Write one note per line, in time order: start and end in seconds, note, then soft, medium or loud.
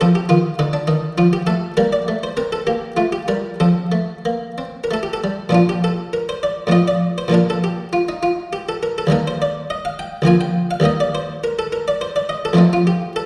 0.01 0.25 F3 medium
0.01 1.73 C4 soft
0.01 0.16 A4 medium
0.15 0.30 G4 medium
0.29 0.54 D#3 medium
0.29 0.55 F4 medium
0.59 0.83 D3 medium
0.59 0.74 D#4 medium
0.73 0.89 D4 medium
0.87 1.12 D#3 soft
0.87 1.18 D#4 medium
1.18 1.42 F3 soft
1.18 1.33 F4 medium
1.33 1.48 G4 medium
1.47 1.71 A3 soft
1.47 1.77 A4 medium
1.77 2.01 G3 soft
1.77 2.66 A#3 soft
1.77 1.92 A#4 medium
1.93 2.18 D5 medium
2.08 2.32 A3 soft
2.23 2.38 C5 medium
2.37 2.61 C4 soft
2.37 2.52 A#4 medium
2.52 2.67 A4 medium
2.67 2.91 A#3 soft
2.67 2.93 G4 medium
2.97 3.22 A3 soft
2.97 3.12 F4 medium
3.12 3.28 G4 medium
3.28 3.54 G3 soft
3.28 3.55 A#4 medium
3.60 3.86 F3 soft
3.60 4.57 C4 soft
3.60 4.65 A4 medium
3.92 4.18 A3 soft
4.25 4.51 A#3 soft
4.58 4.84 C4 soft
4.84 4.93 A#4 medium
4.91 5.16 A3 soft
4.91 5.03 A4 soft
5.03 5.13 G4 soft
5.13 5.23 A4 soft
5.24 5.48 G3 soft
5.49 6.67 A#2 soft
5.49 6.67 F3 soft
5.49 6.69 D4 soft
5.54 5.69 F4 medium
5.69 5.84 G4 medium
5.84 6.14 A4 medium
6.13 6.28 A#4 medium
6.29 6.44 C5 medium
6.43 6.69 D5 medium
6.67 7.28 A2 soft
6.67 7.28 F3 soft
6.67 7.29 C4 soft
6.71 7.30 F4 soft
6.71 6.88 D#5 medium
6.88 7.18 D5 medium
7.18 7.33 C5 medium
7.28 9.05 A#2 soft
7.28 9.06 F3 soft
7.28 9.07 A#3 soft
7.33 9.07 D4 soft
7.33 7.48 A#4 medium
7.50 7.64 A4 medium
7.64 7.88 G4 medium
7.93 8.07 F4 medium
8.09 8.23 D#4 medium
8.23 8.52 F4 medium
8.53 8.67 G4 medium
8.69 8.83 A4 medium
8.83 8.97 A#4 medium
8.98 9.12 A4 medium
9.07 10.21 D#2 soft
9.07 10.21 G3 soft
9.07 10.22 A#3 soft
9.11 10.23 D#4 soft
9.11 9.26 A#4 medium
9.28 9.41 C5 medium
9.42 9.70 D5 medium
9.70 9.84 D#5 medium
9.85 9.99 F5 medium
9.99 10.27 G5 medium
10.22 10.81 D2 soft
10.22 10.81 F3 soft
10.22 10.81 A#3 soft
10.26 10.83 F4 soft
10.26 10.41 G#5 medium
10.41 10.70 G5 medium
10.71 10.85 F5 medium
10.80 12.53 D#2 medium
10.80 12.54 G3 soft
10.80 12.55 A#3 soft
10.80 12.55 D#4 soft
10.85 11.00 D#5 medium
11.00 11.14 D5 medium
11.15 11.44 C5 medium
11.44 11.58 A#4 medium
11.59 11.73 A4 medium
11.72 11.87 A#4 medium
11.88 12.02 D5 medium
12.01 12.16 C5 medium
12.16 12.30 D5 medium
12.29 12.44 D#5 medium
12.45 12.60 A4 medium
12.53 13.26 F2 soft
12.53 13.26 F3 soft
12.53 13.26 A3 soft
12.53 13.26 C4 soft
12.58 12.73 D#4 medium
12.73 12.88 F4 medium
12.87 13.12 G4 medium
13.16 13.26 A4 medium